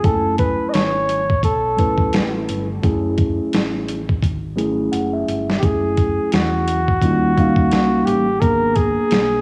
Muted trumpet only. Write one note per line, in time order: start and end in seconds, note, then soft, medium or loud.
0.05 0.38 A4 medium
0.39 0.71 B4 medium
0.69 1.44 C#5 loud
0.69 0.75 D#5 medium
1.45 2.45 A4 medium
5.59 5.66 G4 medium
5.65 6.33 G#4 medium
6.34 8.07 F#4 medium
8.05 8.42 G4 medium
8.41 8.77 A#4 loud
8.76 9.41 G#4 loud